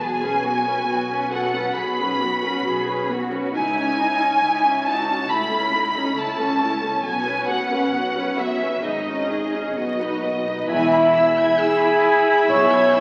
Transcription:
0.00 B1 B3 F#4 G#4 G#5
0.22 C#4 B4
0.44 B3 F#4
0.67 C#4 B4
0.87 B1 B3 F#4
1.10 C#4 B4
1.31 B3 F#4 A4 F#5
1.54 C#4 B4
1.76 B1 B3 F#4 G#4 B5
2.00 C#4 B4
2.21 B3 F#4
2.43 C#4 B4
2.65 B1 B3 F#4 G#4
2.87 C#4 B4
3.09 B3 F#4
3.32 C#4 B4
3.54 C#2 D#4 E4 G#5
3.77 C#4 D#4
3.99 D#4 E4
4.20 C#4 D#4
4.43 C#2 D#4 E4
4.65 C#4 D#4
4.85 D#4 E4 F#4 A5
5.08 C#4 D#4
5.30 C#2 A3 E4 B5
5.51 C#4 A4
5.73 A3 D#4 E4
5.94 C#4 A4
6.16 C#2 A3 C#4 E4 A5
6.38 C#4 A4
6.61 A3 E4
6.83 C#4 A4
7.03 B1 B3 F#4 G#5
7.27 C#4 B4
7.48 B3 F#4 F#5
7.71 C#4 B4
7.93 B1 B3 F#4
8.16 C#4 B4
8.38 B3 F#4 E5
8.61 C#4 B4
8.83 G#1 D#4 G#4 D#5
9.08 C#4 D#4
9.30 D#4 G#4
9.54 C#4 D#4
9.75 B1 B3 F#4 D#5
10.00 D#4 B4
10.24 B3 F#4
10.47 D#4 B4
10.69 E1 E2 E4 E5 G#5 B5
10.93 B5
11.15 E6
11.39 G#6
11.58 G#4 G#5 E6
11.80 B5
12.04 G#5
12.27 B5
12.48 B1 B2 C#5 C#6 E6
12.72 G#6
12.94 E6

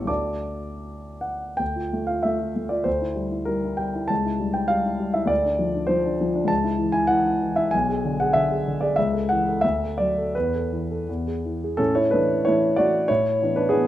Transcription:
Already playing: A1 B3 E4 G4 C#5 A5 C#6
0.05 D2 A3 D4 F#4 D5 A5 D6
1.21 F#5
1.57 D2 G5
1.76 F4
1.93 A3
2.07 F4 F5
2.23 A3 E5
2.56 A3
2.69 F4 D5
2.84 D2 C5
3.01 E4
3.16 G3
3.32 E4
3.45 G3 A#4
3.65 E4
3.77 G3 G5
3.95 E4
4.08 C#2 A5
4.26 E4
4.40 G3
4.54 E4 G5
4.68 G3 F5
4.86 E4
5.00 G3
5.14 E4 E5
5.25 D2 D5
5.45 D4
5.59 F3
5.74 D4
5.87 F3 C5
6.06 D4
6.21 F3
6.35 D4
6.45 C#2 A5
6.64 E4
6.79 E3
6.92 E4 G#5
7.07 E3 F#5
7.25 E4
7.43 E3
7.56 E4 E5
7.71 B1 G#5
7.89 G#4
8.05 D3
8.20 G#4 F#5
8.33 D3 E5
8.51 G#4
8.68 D3
8.81 G#4 D5
8.96 C#2 E5
9.14 A4
9.29 E3 F#5
9.48 A4
9.61 D2 E5
9.84 A4
9.98 F#3 D5
10.18 A4
10.35 E2 B4
10.55 A4
10.72 E3
10.91 A4
11.09 E2
11.27 G#4
11.45 E3
11.64 G#4
11.77 A2 C#4 A4
11.95 E4 C#5
12.11 E3 A3 D4 E4 B4
12.45 E3 A3 E4 C#5
12.76 E3 A3 E4 F#4 D5
13.08 A2 E4 C#5
13.42 E3 B3 D4
13.56 D4 B4
13.69 E3 B3 D4 G#4

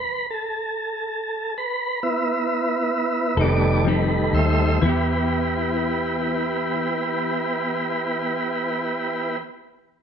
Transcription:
Already playing: B4
0.30 A4
1.58 B4
2.03 B3 E4
3.37 F1 D#3 G3 A3 C4 D#4 A4
3.41 D5
3.85 F3 C4 D#4 A4
3.89 B4
4.33 D#2 C5 E5
4.81 E2 E3 B3 E4 G4 B4
4.85 B3 E4 G4

